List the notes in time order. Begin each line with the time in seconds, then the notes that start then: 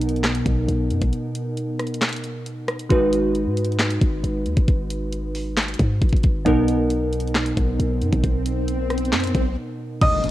Already playing: B1 B2 B3 D#4 A#4
0.02 closed hi-hat
0.09 closed hi-hat
0.16 closed hi-hat
0.24 snare, clap, closed hi-hat
0.35 closed hi-hat
0.46 B1, kick, closed hi-hat
0.68 B1, closed hi-hat
0.90 F#2, closed hi-hat
1.01 B1, kick, closed hi-hat
1.13 closed hi-hat
1.35 closed hi-hat
1.57 closed hi-hat
1.79 cross-stick, closed hi-hat
1.87 closed hi-hat
1.94 closed hi-hat
2.01 snare, clap, closed hi-hat
2.09 closed hi-hat
2.13 closed hi-hat
2.16 closed hi-hat
2.24 closed hi-hat
2.46 closed hi-hat
2.68 cross-stick, closed hi-hat
2.79 closed hi-hat
2.89 G#1 G#3 D#4 F#4 B4, kick, closed hi-hat
3.13 closed hi-hat
3.35 closed hi-hat
3.46 G#2
3.57 closed hi-hat
3.64 closed hi-hat
3.72 closed hi-hat
3.79 snare, clap, closed hi-hat
3.90 closed hi-hat
4.01 G#1, kick, closed hi-hat
4.24 G#1, closed hi-hat
4.46 D#2, closed hi-hat
4.57 G#1, kick, closed hi-hat
4.68 G#1, kick, closed hi-hat
4.90 closed hi-hat
5.12 closed hi-hat
5.35 open hi-hat
5.57 snare, clap, closed hi-hat
5.63 closed hi-hat
5.68 closed hi-hat
5.74 closed hi-hat
5.79 G#2, kick, closed hi-hat
6.02 G#1, kick, closed hi-hat
6.09 G#1, kick, closed hi-hat
6.16 closed hi-hat
6.23 G#1, kick, closed hi-hat
6.45 B1 B2 B3 D#4 A#4, kick, closed hi-hat, swell
6.68 closed hi-hat
6.90 closed hi-hat
7.13 closed hi-hat
7.20 closed hi-hat
7.27 closed hi-hat
7.35 snare, clap, closed hi-hat
7.46 closed hi-hat
7.57 B1, kick, closed hi-hat
7.79 B1, closed hi-hat
8.01 F#2, closed hi-hat
8.13 B1, kick, closed hi-hat
8.24 B1, kick, closed hi-hat
8.46 closed hi-hat
8.68 closed hi-hat
8.90 cross-stick, closed hi-hat
8.98 closed hi-hat
9.05 closed hi-hat
9.13 F#2, snare, clap, closed hi-hat
9.20 closed hi-hat
9.24 closed hi-hat
9.27 closed hi-hat
9.35 B1, kick, closed hi-hat
10.01 G#1 D#5 D#6, kick, closed hi-hat, crash, impact
10.24 closed hi-hat